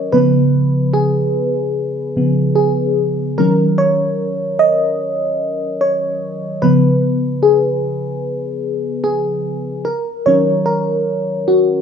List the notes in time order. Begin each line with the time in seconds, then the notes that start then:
Already playing: C#5 D#5
0.12 C#3 F3 B3 B4
0.93 G#4
2.16 C#3 F3 B3
2.55 G#4
3.38 D#3 F#3 C#4 A#4
3.78 C#5
4.59 D#5
5.81 C#5
6.62 C#3 F3 B3 B4
7.43 G#4
9.04 G#4
9.85 A#4
10.26 D#3 F#3 C#4 C#5
10.66 A#4
11.48 F#4